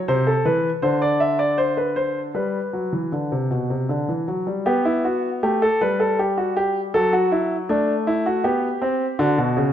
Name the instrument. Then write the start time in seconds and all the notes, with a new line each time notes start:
grand piano
0.08 C3 C5
0.27 A4
0.45 E3 B4
0.82 D3 C5
1.02 D5
1.20 E5
1.39 D5
1.58 C5
1.77 B4
1.96 C5
2.35 G3 B4
2.73 F#3
2.93 E3
3.12 D3
3.32 C3
3.51 B2
3.70 C3
3.89 D3
4.09 E3
4.28 F#3
4.47 G3
4.66 B3 G4
4.85 E4
5.05 F#4
5.43 A3 G4
5.62 A4
5.81 G3 B4
6.00 A4
6.19 G4
6.38 F#4
6.57 G4
6.94 F#3 A4
7.13 F#4
7.32 E4
7.69 A3 D4
8.07 E4
8.26 F#4
8.44 B3 G4
8.82 C4
9.19 D3 F#4
9.38 B2
9.57 C#3